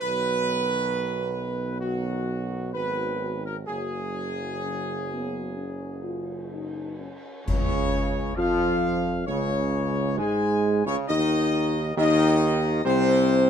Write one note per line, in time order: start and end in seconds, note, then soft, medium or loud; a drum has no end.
0.00 2.76 B1 medium
0.00 1.77 D#3 medium
0.00 1.77 F#3 medium
0.00 1.77 B3 medium
0.00 1.77 F#4 loud
0.00 1.76 B4 loud
1.80 2.71 D#3 medium
1.80 2.71 F#3 medium
1.80 2.71 B3 medium
1.80 2.70 F#4 medium
1.80 2.71 F#4 medium
2.73 3.68 G#1 medium
2.73 3.64 D#3 medium
2.73 3.64 F#3 medium
2.73 3.50 B3 medium
2.73 3.50 F#4 medium
2.73 3.41 B4 loud
3.45 3.56 A#4 medium
3.66 7.10 F#1 medium
3.66 7.13 C#3 medium
3.66 7.09 F#3 medium
3.66 4.49 A#3 medium
3.66 4.49 F#4 medium
3.66 6.95 G#4 loud
4.63 5.07 C#4 medium
5.12 5.55 B3 medium
5.57 6.01 C#4 medium
6.03 6.48 F4 medium
6.50 6.99 D#4 medium
6.99 7.43 C#4 medium
7.46 8.33 C#2 loud
7.46 8.33 C#3 loud
7.46 8.33 C#4 loud
7.46 8.33 C#5 loud
7.46 concert bass drum medium
7.46 crash medium
8.36 9.23 F2 loud
8.36 9.23 F3 loud
8.36 9.23 F4 loud
8.36 9.27 F5 loud
9.26 10.20 C#2 loud
9.26 10.16 C#3 loud
9.26 10.16 C#4 loud
9.26 10.15 C#5 loud
10.17 10.85 G#2 loud
10.17 10.82 G#3 loud
10.17 10.83 G#4 loud
10.17 10.86 G#5 loud
10.86 10.96 C#2 loud
10.86 11.07 C#3 loud
10.86 11.07 C#4 loud
10.86 10.96 C#5 loud
11.07 11.93 D#2 loud
11.07 11.93 D#3 loud
11.07 11.80 D#4 loud
11.07 11.93 D#5 loud
11.97 12.81 D#2 loud
11.97 12.82 D#3 loud
11.97 12.81 D#4 loud
11.97 12.82 D#5 loud
12.84 13.50 C2 loud
12.84 13.50 C3 loud
12.84 13.50 C4 loud
12.84 13.50 C5 loud